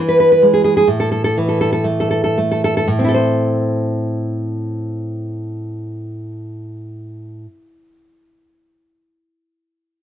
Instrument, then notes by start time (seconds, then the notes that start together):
nylon-string guitar
Already playing: E3
0.09 B4
0.20 B4
0.32 B4
0.42 G#3
0.54 G#4
0.64 G#4
0.77 G#4
0.87 A2
1.00 A4
1.12 A4
1.24 A4
1.38 E3
1.49 A4
1.61 A4
1.73 A4
1.84 A3
2.00 A4
2.11 A4
2.24 A4
2.38 A3
2.52 A4
2.64 A4
2.77 A4
2.88 A2
2.99 C4
3.04 E4
3.09 A4
3.14 C5